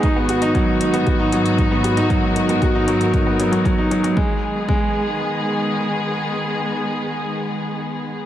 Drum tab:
HH |x-xxx-xxx-xxx-xx|x-xxx-xxx-xxx-xx|----------------|----------------|
BD |o---o---o---o---|o---o---o---o---|o---o-----------|----------------|